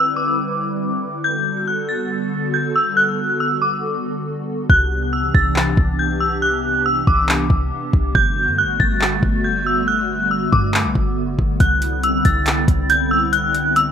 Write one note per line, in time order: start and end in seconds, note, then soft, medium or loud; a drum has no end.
0.00 1.20 D3 medium
0.00 4.66 G3 medium
0.00 1.21 C4 medium
0.00 1.21 E4 medium
0.00 1.21 B4 medium
0.00 0.15 E6 loud
0.16 1.20 D6 medium
1.24 4.66 D3 medium
1.24 4.66 B3 medium
1.24 4.66 F#4 medium
1.24 4.66 A4 medium
1.24 1.65 G6 loud
1.68 1.88 F#6 medium
1.89 2.50 A6 medium
2.54 2.74 G6 medium
2.76 2.96 E6 medium
2.97 3.37 F#6 loud
3.40 3.61 E6 medium
3.62 3.82 D6 medium
4.69 5.32 C2 loud
4.69 8.11 C3 medium
4.69 8.11 E3 medium
4.69 13.92 B3 medium
4.69 8.11 D4 medium
4.69 8.11 G4 medium
4.69 5.10 F#6 medium
4.69 kick loud
5.13 5.33 E6 medium
5.34 5.76 C2 loud
5.34 5.95 A6 medium
5.34 kick loud
5.56 clap loud
5.77 7.03 C2 loud
5.77 kick loud
5.99 6.20 G6 medium
6.20 6.41 E6 medium
6.42 6.83 F#6 loud
6.86 7.06 E6 loud
7.07 7.49 C2 loud
7.07 8.11 D6 medium
7.07 kick loud
7.29 clap loud
7.50 7.71 C2 loud
7.50 kick medium
7.93 8.14 C2 loud
7.93 kick loud
8.15 8.49 G1 loud
8.15 13.92 D3 medium
8.15 11.57 G3 medium
8.15 11.57 A3 medium
8.15 11.57 F#4 medium
8.15 8.56 G6 loud
8.15 kick loud
8.47 8.65 G2 loud
8.58 8.79 F#6 medium
8.63 8.79 G1 loud
8.80 9.21 G1 loud
8.80 9.41 A6 medium
8.80 kick loud
9.02 clap loud
9.23 10.48 G1 loud
9.23 kick loud
9.44 9.65 G6 medium
9.66 9.87 E6 medium
9.88 10.28 F#6 loud
10.31 10.51 E6 medium
10.52 10.86 G2 loud
10.52 10.73 D6 medium
10.52 kick loud
10.74 clap loud
10.85 10.95 B1 loud
10.95 11.37 G1 loud
10.95 kick loud
11.39 11.59 G1 loud
11.39 kick loud
11.60 12.22 C2 loud
11.60 13.92 G3 medium
11.60 13.92 C4 medium
11.60 13.92 E4 medium
11.60 12.01 F#6 medium
11.60 kick loud
11.60 closed hi-hat medium
11.82 closed hi-hat medium
12.03 12.24 E6 medium
12.03 closed hi-hat medium
12.25 12.67 C2 loud
12.25 12.86 A6 medium
12.25 kick medium
12.25 closed hi-hat medium
12.46 clap loud
12.46 closed hi-hat medium
12.68 13.92 C2 loud
12.68 kick loud
12.68 closed hi-hat medium
12.90 13.10 G6 medium
12.90 closed hi-hat medium
13.11 13.32 E6 medium
13.33 13.73 F#6 loud
13.33 closed hi-hat medium
13.55 closed hi-hat medium
13.76 13.92 E6 loud
13.76 closed hi-hat medium